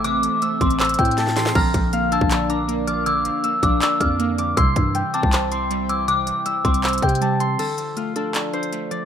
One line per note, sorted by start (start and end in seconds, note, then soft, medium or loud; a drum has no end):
0.00 0.29 A1 loud
0.00 0.05 C3 medium
0.00 0.23 E3 medium
0.00 0.42 A3 loud
0.00 0.61 C4 loud
0.00 1.52 C4 medium
0.00 1.52 A4 medium
0.00 0.24 C5 medium
0.00 1.52 E5 medium
0.00 0.47 G5 medium
0.00 0.55 A5 medium
0.00 0.78 C6 medium
0.04 0.99 C3 medium
0.04 0.58 D6 loud
0.04 0.60 D6 loud
0.04 closed hi-hat medium
0.23 1.18 E3 medium
0.23 closed hi-hat medium
0.42 1.17 A3 medium
0.42 0.79 E6 medium
0.42 closed hi-hat medium
0.61 0.97 A1 loud
0.61 0.97 C4 loud
0.61 0.97 C6 medium
0.61 1.83 D6 medium
0.61 kick loud
0.61 closed hi-hat medium
0.70 closed hi-hat medium
0.80 1.55 C5 medium
0.80 1.99 E6 medium
0.80 clap loud
0.80 closed hi-hat medium
0.85 closed hi-hat medium
0.89 closed hi-hat medium
0.94 closed hi-hat medium
0.99 1.53 A2 loud
0.99 1.55 C4 medium
0.99 2.54 G5 medium
0.99 1.17 E6 medium
0.99 kick medium
0.99 closed hi-hat soft
1.05 closed hi-hat medium
1.11 closed hi-hat medium
1.18 1.56 A3 loud
1.18 1.61 A5 medium
1.18 snare medium
1.18 closed hi-hat medium
1.27 snare medium
1.36 1.55 E3 medium
1.36 2.67 C6 medium
1.36 snare loud
1.36 closed hi-hat medium
1.46 snare loud
1.55 1.73 A#1 loud
1.55 2.50 D3 medium
1.55 4.54 D4 medium
1.55 4.54 A#4 medium
1.55 4.54 F5 medium
1.55 2.18 A#5 loud
1.55 2.09 F6 loud
1.55 kick loud
1.55 crash medium
1.74 2.20 A#1 loud
1.74 2.69 F3 medium
1.74 kick medium
1.74 closed hi-hat medium
1.93 2.67 A#3 medium
1.93 3.50 F5 medium
1.93 closed hi-hat medium
2.12 2.49 D4 loud
2.12 2.56 A5 medium
2.12 2.47 E6 medium
2.12 closed hi-hat medium
2.21 3.31 A#1 loud
2.21 kick loud
2.31 3.25 D5 medium
2.31 clap loud
2.31 closed hi-hat medium
2.50 3.44 D4 medium
2.50 3.90 A#5 medium
2.50 2.85 D6 medium
2.50 closed hi-hat medium
2.68 3.43 A#3 loud
2.68 closed hi-hat medium
2.87 3.25 F3 medium
2.87 3.06 D6 medium
2.87 3.05 F6 medium
2.87 closed hi-hat medium
3.06 4.01 D3 medium
3.06 3.63 D6 loud
3.06 3.59 E6 loud
3.06 closed hi-hat medium
3.25 4.20 F3 medium
3.25 closed hi-hat medium
3.44 4.18 A#3 medium
3.44 3.81 E6 medium
3.44 closed hi-hat medium
3.63 3.81 A#1 loud
3.63 4.00 D4 medium
3.63 3.98 D6 medium
3.63 4.00 D6 medium
3.63 kick loud
3.63 closed hi-hat medium
3.81 4.57 D5 medium
3.81 4.96 E6 loud
3.81 clap loud
3.81 closed hi-hat medium
4.00 4.55 F2 loud
4.00 4.57 D4 medium
4.00 4.38 D6 medium
4.00 4.54 F6 medium
4.00 kick medium
4.00 closed hi-hat medium
4.19 4.57 A#3 loud
4.19 closed hi-hat medium
4.38 4.57 F3 medium
4.38 5.60 D6 medium
4.38 closed hi-hat medium
4.57 4.75 C2 loud
4.57 5.52 C3 medium
4.57 7.56 E4 medium
4.57 7.56 C5 medium
4.57 7.56 G5 medium
4.57 5.51 C6 loud
4.57 5.10 E6 loud
4.57 kick loud
4.57 closed hi-hat medium
4.76 5.03 G2 loud
4.76 5.70 E3 medium
4.76 kick loud
4.76 closed hi-hat medium
4.95 5.69 G3 medium
4.95 6.50 G5 medium
4.95 closed hi-hat medium
5.14 5.51 C4 medium
5.14 6.59 A5 medium
5.14 5.49 D6 medium
5.14 closed hi-hat medium
5.23 6.32 C2 loud
5.23 kick loud
5.33 6.27 C5 medium
5.33 clap loud
5.33 closed hi-hat medium
5.52 6.46 C4 medium
5.52 5.87 C6 medium
5.52 6.82 C6 medium
5.52 closed hi-hat medium
5.71 6.44 G3 loud
5.71 closed hi-hat medium
5.89 6.25 E3 medium
5.89 6.08 D6 loud
5.89 6.07 E6 medium
5.89 closed hi-hat medium
6.08 7.02 C3 medium
6.08 6.61 D6 loud
6.08 6.64 D6 loud
6.08 closed hi-hat medium
6.27 7.21 E3 medium
6.27 closed hi-hat medium
6.46 7.20 G3 medium
6.46 6.83 E6 medium
6.46 closed hi-hat medium
6.64 7.01 C2 loud
6.64 7.01 C4 loud
6.64 7.00 C6 medium
6.64 7.86 D6 medium
6.64 kick loud
6.64 closed hi-hat medium
6.74 closed hi-hat medium
6.84 7.59 C5 medium
6.84 8.03 E6 medium
6.84 clap loud
6.84 closed hi-hat medium
6.88 closed hi-hat medium
6.93 closed hi-hat medium
6.98 closed hi-hat medium
7.02 7.57 C3 loud
7.02 7.59 C4 medium
7.02 8.58 G5 medium
7.02 7.20 E6 medium
7.02 kick medium
7.02 closed hi-hat soft
7.09 closed hi-hat medium
7.15 closed hi-hat medium
7.21 7.59 G3 loud
7.21 8.66 A5 medium
7.21 closed hi-hat medium
7.40 7.59 E3 medium
7.40 8.71 C6 loud
7.40 closed hi-hat medium
7.59 8.54 D3 medium
7.59 8.15 A4 medium
7.59 closed hi-hat medium
7.59 crash loud
7.78 8.72 F3 medium
7.78 closed hi-hat medium
7.97 8.71 A3 medium
7.97 9.05 F4 medium
7.97 closed hi-hat medium
8.16 8.53 D4 loud
8.16 9.05 A4 medium
8.16 closed hi-hat medium
8.34 9.05 D5 medium
8.34 clap loud
8.34 closed hi-hat medium
8.53 9.05 D4 medium
8.53 9.05 C5 medium
8.53 closed hi-hat soft
8.63 closed hi-hat medium
8.73 9.05 A3 loud
8.73 closed hi-hat medium
8.91 9.05 F3 medium
8.91 9.05 D5 medium
8.91 closed hi-hat medium